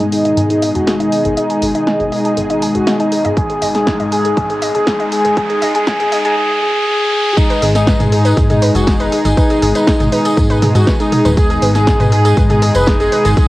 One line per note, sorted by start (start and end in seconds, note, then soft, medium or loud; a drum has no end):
0.00 0.34 G#2 medium
0.00 6.33 B2 medium
0.00 6.33 D#3 medium
0.00 0.84 G#3 loud
0.00 6.33 G#3 medium
0.00 0.84 D#4 medium
0.00 6.33 D#4 medium
0.00 0.84 G#4 loud
0.00 6.33 G#4 medium
0.00 0.05 G#5 medium
0.00 closed hi-hat soft
0.00 riser medium
0.12 0.41 D#4 medium
0.12 0.24 G#4 medium
0.12 open hi-hat medium
0.25 0.30 D#5 loud
0.25 closed hi-hat soft
0.37 0.72 G#2 medium
0.37 0.42 G#5 medium
0.37 closed hi-hat medium
0.50 0.69 D#4 medium
0.50 0.62 G#4 medium
0.50 closed hi-hat soft
0.62 0.67 D#5 loud
0.62 open hi-hat loud
0.75 1.09 F#1 medium
0.75 0.94 F#4 medium
0.75 0.80 G#5 medium
0.75 closed hi-hat soft
0.87 1.34 G#3 medium
0.87 1.34 D#4 medium
0.87 1.34 G#4 loud
0.87 0.99 G#4 medium
0.87 snare loud
0.87 closed hi-hat medium
1.00 1.28 D#4 medium
1.00 1.05 D#5 loud
1.00 closed hi-hat soft
1.12 1.17 G#5 medium
1.12 open hi-hat medium
1.25 1.35 G#1 medium
1.25 1.37 G#4 medium
1.25 closed hi-hat soft
1.37 1.72 G#3 loud
1.37 1.66 D#4 loud
1.37 1.72 D#4 medium
1.37 1.72 G#4 loud
1.37 1.42 D#5 loud
1.37 closed hi-hat medium
1.50 1.55 G#5 medium
1.50 closed hi-hat soft
1.62 1.73 G#1 medium
1.62 1.74 G#4 medium
1.62 open hi-hat loud
1.75 3.34 G#3 medium
1.75 2.03 D#4 loud
1.75 3.34 D#4 medium
1.75 3.34 G#4 loud
1.75 1.80 D#5 loud
1.75 closed hi-hat soft
1.87 1.92 G#5 medium
1.87 snare loud
1.87 closed hi-hat medium
2.00 2.10 G#1 medium
2.00 2.12 G#4 medium
2.00 closed hi-hat soft
2.12 2.41 D#4 loud
2.12 2.17 D#5 loud
2.12 open hi-hat medium
2.25 2.30 G#5 medium
2.25 closed hi-hat soft
2.37 2.72 G#1 medium
2.37 2.49 G#4 medium
2.37 closed hi-hat medium
2.50 2.69 D#4 medium
2.50 2.55 D#5 loud
2.50 closed hi-hat soft
2.62 2.67 G#5 medium
2.62 open hi-hat loud
2.75 2.85 D#1 loud
2.75 2.94 F#4 medium
2.75 2.87 G#4 medium
2.75 closed hi-hat soft
2.87 2.92 D#5 loud
2.87 snare loud
2.87 closed hi-hat medium
3.00 3.28 D#4 loud
3.00 3.05 G#5 medium
3.00 closed hi-hat soft
3.12 3.24 G#4 medium
3.12 open hi-hat loud
3.25 3.59 G#1 loud
3.25 3.30 D#5 loud
3.25 closed hi-hat soft
3.37 3.72 G#3 medium
3.37 3.72 D#4 medium
3.37 3.66 G#4 medium
3.37 3.72 G#4 medium
3.37 3.42 G#5 medium
3.37 kick loud
3.37 closed hi-hat medium
3.50 3.62 G#4 medium
3.50 closed hi-hat soft
3.62 3.97 G#1 loud
3.62 3.67 D#5 loud
3.62 open hi-hat loud
3.75 4.35 G#3 medium
3.75 4.35 D#4 medium
3.75 4.03 G#4 medium
3.75 4.35 G#4 loud
3.75 3.80 G#5 medium
3.75 snare soft
3.75 closed hi-hat soft
3.87 3.99 G#4 medium
3.87 kick loud
3.87 snare loud
3.87 closed hi-hat medium
4.00 4.34 G#2 medium
4.00 4.05 D#5 medium
4.00 closed hi-hat soft
4.12 4.35 G#4 loud
4.12 4.17 G#5 medium
4.12 open hi-hat loud
4.25 4.35 G#4 medium
4.25 closed hi-hat soft
4.37 4.72 G#2 medium
4.37 4.72 G#3 medium
4.37 4.72 D#4 medium
4.37 4.72 G#4 medium
4.37 4.66 G#4 loud
4.37 4.42 G#5 medium
4.37 kick loud
4.37 closed hi-hat medium
4.50 4.62 G#4 medium
4.50 closed hi-hat soft
4.62 4.67 D#5 loud
4.62 open hi-hat loud
4.75 5.09 F#1 medium
4.75 5.35 G#3 medium
4.75 5.35 D#4 medium
4.75 5.03 G#4 medium
4.75 5.35 G#4 loud
4.75 4.80 G#5 medium
4.75 closed hi-hat soft
4.87 4.99 G#4 medium
4.87 kick loud
4.87 snare loud
4.87 closed hi-hat medium
5.00 5.05 D#5 loud
5.00 closed hi-hat soft
5.12 5.35 G#4 medium
5.12 5.17 G#5 medium
5.12 open hi-hat loud
5.25 5.35 G#1 medium
5.25 5.35 G#4 medium
5.25 closed hi-hat soft
5.37 5.72 G#3 medium
5.37 5.72 D#4 medium
5.37 5.66 G#4 loud
5.37 5.72 G#4 medium
5.37 5.42 G#5 medium
5.37 kick loud
5.37 closed hi-hat medium
5.50 5.62 G#4 medium
5.50 closed hi-hat soft
5.62 5.73 G#1 medium
5.62 5.67 D#5 loud
5.62 open hi-hat loud
5.75 5.85 G#3 loud
5.75 5.85 D#4 medium
5.75 5.85 G#4 medium
5.75 5.85 G#4 loud
5.75 5.80 G#5 medium
5.75 closed hi-hat soft
5.87 6.22 G#3 medium
5.87 6.22 D#4 medium
5.87 6.16 G#4 loud
5.87 6.22 G#4 medium
5.87 5.92 G#5 medium
5.87 kick loud
5.87 snare loud
5.87 closed hi-hat medium
6.00 6.10 G#1 medium
6.00 6.12 G#4 medium
6.00 closed hi-hat soft
6.12 6.17 D#5 loud
6.12 open hi-hat loud
6.25 6.35 G#3 loud
6.25 6.35 D#4 medium
6.25 6.35 G#4 medium
6.25 6.35 G#4 loud
6.25 6.30 G#5 medium
6.25 closed hi-hat soft
6.37 6.60 G#4 loud
6.62 6.85 G#4 loud
6.87 7.10 G#4 loud
7.12 7.35 G#4 loud
7.37 13.48 B2 medium
7.37 13.48 D#3 medium
7.37 7.72 G#3 medium
7.37 13.48 G#3 medium
7.37 7.66 D#4 loud
7.37 7.66 D#4 medium
7.37 7.72 D#4 medium
7.37 13.48 D#4 medium
7.37 7.42 G#4 medium
7.37 7.72 G#4 medium
7.37 13.48 G#4 medium
7.37 kick loud
7.37 closed hi-hat medium
7.37 ride medium
7.37 tambourine medium
7.50 7.58 B4 loud
7.50 closed hi-hat soft
7.50 tambourine soft
7.62 7.97 G#1 loud
7.62 7.71 G#4 medium
7.62 open hi-hat loud
7.62 ride medium
7.75 8.84 G#3 loud
7.75 8.03 D#4 loud
7.75 8.84 D#4 medium
7.75 8.03 D#4 loud
7.75 7.80 G#4 medium
7.75 8.84 G#4 loud
7.75 snare soft
7.75 closed hi-hat soft
7.75 tambourine medium
7.87 7.96 B4 loud
7.87 kick loud
7.87 snare loud
7.87 closed hi-hat medium
7.87 ride medium
7.87 tambourine medium
8.00 8.34 G#2 medium
8.00 8.08 G#4 medium
8.00 snare medium
8.00 closed hi-hat soft
8.00 mid tom medium
8.00 tambourine soft
8.12 8.41 D#4 loud
8.12 8.41 D#4 medium
8.12 8.17 G#4 medium
8.12 open hi-hat medium
8.12 ride medium
8.25 8.33 B4 loud
8.25 closed hi-hat soft
8.25 tambourine medium
8.37 8.72 G#2 medium
8.37 8.46 G#4 medium
8.37 kick loud
8.37 closed hi-hat medium
8.37 ride loud
8.37 tambourine medium
8.50 8.69 D#4 medium
8.50 8.55 G#4 medium
8.50 closed hi-hat soft
8.50 mid tom medium
8.50 tambourine soft
8.62 8.71 B4 loud
8.62 snare soft
8.62 open hi-hat loud
8.62 ride medium
8.75 9.09 F#1 medium
8.75 8.94 F#4 medium
8.75 8.83 G#4 medium
8.75 closed hi-hat soft
8.75 tambourine medium
8.87 9.34 G#3 loud
8.87 9.34 D#4 medium
8.87 9.34 G#4 loud
8.87 8.92 G#4 medium
8.87 kick loud
8.87 snare loud
8.87 closed hi-hat medium
8.87 ride medium
8.87 tambourine medium
9.00 9.28 D#4 medium
9.00 9.28 D#4 loud
9.00 9.08 B4 loud
9.00 snare medium
9.00 closed hi-hat soft
9.00 tambourine soft
9.12 9.21 G#4 medium
9.12 open hi-hat medium
9.12 ride medium
9.25 9.35 G#1 medium
9.25 9.30 G#4 medium
9.25 closed hi-hat soft
9.25 ride soft
9.25 tambourine medium
9.37 9.72 G#3 loud
9.37 9.72 D#4 medium
9.37 9.66 D#4 loud
9.37 9.72 G#4 loud
9.37 9.46 B4 loud
9.37 kick loud
9.37 closed hi-hat medium
9.37 ride medium
9.37 tambourine medium
9.50 9.58 G#4 medium
9.50 snare soft
9.50 closed hi-hat soft
9.50 tambourine soft
9.62 9.73 G#1 medium
9.62 9.67 G#4 medium
9.62 open hi-hat loud
9.62 ride medium
9.75 10.60 G#3 medium
9.75 10.03 D#4 loud
9.75 10.03 D#4 medium
9.75 10.60 D#4 medium
9.75 10.60 G#4 medium
9.75 9.83 B4 loud
9.75 closed hi-hat soft
9.75 tambourine medium
9.87 9.96 G#4 medium
9.87 kick loud
9.87 snare loud
9.87 closed hi-hat medium
9.87 ride medium
9.87 tambourine medium
10.00 10.10 G#1 medium
10.00 10.05 G#4 medium
10.00 snare soft
10.00 closed hi-hat soft
10.00 mid tom medium
10.00 tambourine soft
10.12 10.41 D#4 loud
10.12 10.21 B4 loud
10.12 open hi-hat loud
10.12 ride medium
10.25 10.33 G#4 medium
10.25 closed hi-hat soft
10.25 tambourine medium
10.37 10.72 G#2 medium
10.37 10.42 G#4 medium
10.37 kick loud
10.37 closed hi-hat medium
10.37 ride medium
10.37 tambourine medium
10.50 10.69 D#4 medium
10.50 10.58 B4 loud
10.50 closed hi-hat soft
10.50 tambourine soft
10.62 11.34 G#3 medium
10.62 11.34 D#4 medium
10.62 11.34 G#4 medium
10.62 10.71 G#4 medium
10.62 snare soft
10.62 mid tom loud
10.62 open hi-hat loud
10.62 ride medium
10.75 10.85 G#2 medium
10.75 10.94 F#4 medium
10.75 10.80 G#4 medium
10.75 snare soft
10.75 closed hi-hat soft
10.75 tambourine medium
10.87 10.96 B4 loud
10.87 kick loud
10.87 snare loud
10.87 closed hi-hat medium
10.87 open hi-hat medium
10.87 tambourine medium
11.00 11.28 D#4 loud
11.00 11.29 D#4 loud
11.00 11.08 G#4 medium
11.00 snare soft
11.00 closed hi-hat soft
11.00 tambourine soft
11.12 11.17 G#4 medium
11.12 mid tom medium
11.12 open hi-hat loud
11.12 ride medium
11.25 11.59 D#1 loud
11.25 11.33 B4 loud
11.25 closed hi-hat soft
11.25 tambourine medium
11.37 11.72 G#3 medium
11.37 11.72 D#4 medium
11.37 11.72 G#4 medium
11.37 11.46 G#4 medium
11.37 11.66 G#4 loud
11.37 11.66 G#4 medium
11.37 kick loud
11.37 closed hi-hat medium
11.37 ride medium
11.37 tambourine medium
11.50 11.55 G#4 medium
11.50 closed hi-hat soft
11.50 tambourine soft
11.62 11.97 G#1 medium
11.62 11.71 B4 loud
11.62 open hi-hat loud
11.62 ride medium
11.75 12.84 G#3 loud
11.75 12.84 D#4 medium
11.75 12.84 G#4 loud
11.75 12.03 G#4 loud
11.75 11.83 G#4 medium
11.75 12.04 G#4 loud
11.75 snare soft
11.75 closed hi-hat soft
11.75 tambourine medium
11.87 11.92 G#4 medium
11.87 kick loud
11.87 snare loud
11.87 closed hi-hat medium
11.87 ride medium
11.87 tambourine medium
12.00 12.34 G#2 medium
12.00 12.08 B4 loud
12.00 snare medium
12.00 closed hi-hat soft
12.00 mid tom medium
12.00 tambourine soft
12.12 12.41 G#4 loud
12.12 12.21 G#4 medium
12.12 open hi-hat medium
12.12 ride medium
12.25 12.30 G#4 medium
12.25 closed hi-hat soft
12.25 tambourine medium
12.37 12.72 G#2 medium
12.37 12.46 B4 loud
12.37 kick loud
12.37 closed hi-hat medium
12.37 ride loud
12.37 tambourine medium
12.50 12.69 G#4 medium
12.50 12.58 G#4 medium
12.50 12.69 G#4 medium
12.50 closed hi-hat soft
12.50 mid tom medium
12.50 tambourine soft
12.62 12.67 G#4 medium
12.62 snare soft
12.62 open hi-hat loud
12.62 ride medium
12.75 13.09 F#1 medium
12.75 12.94 B4 medium
12.75 12.83 B4 loud
12.75 12.94 B4 medium
12.75 closed hi-hat soft
12.75 tambourine medium
12.86 13.34 G#3 loud
12.86 13.34 D#4 medium
12.86 12.96 G#4 medium
12.86 13.34 G#4 loud
12.86 kick loud
12.86 snare loud
12.86 closed hi-hat medium
12.86 ride medium
12.86 tambourine medium
13.00 13.05 G#4 medium
13.00 13.28 G#4 medium
13.00 13.28 G#4 loud
13.00 snare medium
13.00 closed hi-hat soft
13.00 tambourine soft
13.12 13.21 B4 loud
13.12 open hi-hat loud
13.12 ride medium
13.25 13.35 G#1 medium
13.25 13.33 G#4 medium
13.25 closed hi-hat soft
13.25 ride soft
13.25 tambourine medium
13.37 13.48 G#3 loud
13.37 13.48 D#4 medium
13.37 13.48 G#4 loud
13.37 13.42 G#4 medium
13.37 13.48 G#4 loud
13.37 13.48 G#4 medium
13.37 kick loud
13.37 closed hi-hat medium
13.37 ride medium
13.37 tambourine medium